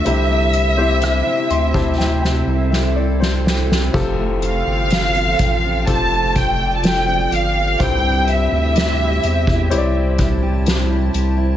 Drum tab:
CC |----------------|x---------------|----------------|
HH |x-x-x-x---------|--x-xxx-x-x-x-x-|x-x-x-x-x-x-x-x-|
SD |----r---oo-o-ooo|----o-------o---|----o-------o---|
BD |-------o--------|o-----o-o-o-----|o------o--o-----|